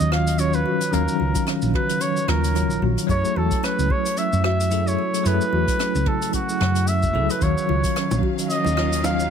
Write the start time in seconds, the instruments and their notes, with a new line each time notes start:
Already playing: tine electric piano D#3 F#3 C#4 F5, flugelhorn D#5
0.01 fingered electric bass D#2
0.12 kalimba F4, flugelhorn F5, cross-stick
0.27 closed hi-hat, cabasa
0.38 tine electric piano D#3 F#3 C#4 F4, kalimba C#4, flugelhorn C#5, closed hi-hat, cabasa
0.53 flugelhorn B4, cabasa
0.66 kalimba F#4
0.81 closed hi-hat, cabasa
0.91 fingered electric bass D#2, tine electric piano D#3 C#4 F5, kalimba C#4, flugelhorn A#4, closed hi-hat, cabasa
0.95 tine electric piano F#3
1.08 cabasa
1.20 fingered electric bass C#2, kalimba F4
1.35 kick, closed hi-hat, cabasa
1.46 kalimba C#4, cross-stick, closed hi-hat, cabasa
1.62 fingered electric bass A#1, cabasa
1.74 kalimba F#4, flugelhorn B4, kick, mid tom
1.89 closed hi-hat, cabasa
2.01 kalimba C#4, flugelhorn C#5, closed hi-hat, cabasa
2.17 cabasa
2.28 fingered electric bass D#2, kalimba F4, flugelhorn A#4, cross-stick, mid tom
2.44 closed hi-hat, cabasa
2.53 tine electric piano D#3 F#3 C#4 F4, kalimba C#4, closed hi-hat, cabasa
2.70 fingered electric bass A#1, cabasa
2.82 fingered electric bass A#1, kalimba F#4
2.98 closed hi-hat, cabasa
3.07 fingered electric bass F#2, tine electric piano F#3 E4 G#4, kalimba C#4, flugelhorn C#5, kick, closed hi-hat, cabasa
3.11 tine electric piano A3
3.25 cabasa
3.36 fingered electric bass E2, kalimba F#4, flugelhorn A4
3.51 kick, closed hi-hat, cabasa
3.63 kalimba C#4, flugelhorn B4, cross-stick, closed hi-hat, cabasa
3.79 fingered electric bass C#2, cabasa
3.90 kalimba G#4, flugelhorn C#5, kick
4.06 closed hi-hat, cabasa
4.17 kalimba C#4, flugelhorn E5, closed hi-hat, cabasa
4.33 fingered electric bass F#2, cabasa
4.44 kalimba F#4, flugelhorn E5, cross-stick
4.60 closed hi-hat, cabasa
4.70 tine electric piano F#3 E4 G#4 A4, kalimba C#4, closed hi-hat, cabasa
4.88 flugelhorn C#5, cabasa
4.99 kalimba G#4
5.14 closed hi-hat, cabasa
5.23 fingered electric bass F#2, tine electric piano F#3 E4 G#4, kalimba C#4, flugelhorn B4, closed hi-hat, cabasa
5.27 tine electric piano A3
5.41 cabasa
5.53 fingered electric bass E2, kalimba F#4
5.68 kick, closed hi-hat, cabasa
5.79 kalimba C#4, cross-stick, closed hi-hat, cabasa
5.95 fingered electric bass C#2, cabasa
6.06 kalimba G#4, flugelhorn A4, kick, mid tom
6.22 closed hi-hat, cabasa
6.33 kalimba C#4, flugelhorn F#4, kick, closed hi-hat, cabasa
6.49 cabasa
6.61 fingered electric bass F#2, kalimba E4, cross-stick, mid tom
6.76 closed hi-hat, cabasa
6.87 kalimba C#4, flugelhorn E5, closed hi-hat, cabasa
7.03 fingered electric bass F#1, kick, cabasa
7.13 fingered electric bass C#2, tine electric piano F#3 E4 G#4 A4, kalimba G#4
7.30 flugelhorn B4, closed hi-hat, cabasa
7.39 fingered electric bass D#2, tine electric piano D#3 C#4 F5, string section D#3 F#3 C#4 F5, kalimba C#4, flugelhorn C#5, kick, closed hi-hat, cabasa
7.43 tine electric piano F#3
7.58 cabasa
7.69 fingered electric bass C#2, kalimba F4, high bongo
7.84 kick, closed hi-hat, cabasa
7.96 kalimba C#4, cross-stick, closed hi-hat, cabasa
8.11 fingered electric bass A#1, high bongo, cabasa
8.23 kalimba F#4, kick
8.39 closed hi-hat, cabasa
8.50 kalimba C#4, flugelhorn D#5, closed hi-hat, cabasa
8.64 fingered electric bass D#2, high bongo, cabasa
8.77 kalimba F4, cross-stick
8.93 closed hi-hat, cabasa
9.02 tine electric piano D#3 F#3 C#4 F4, kalimba C#4, flugelhorn F5, closed hi-hat, high bongo, cabasa
9.20 cabasa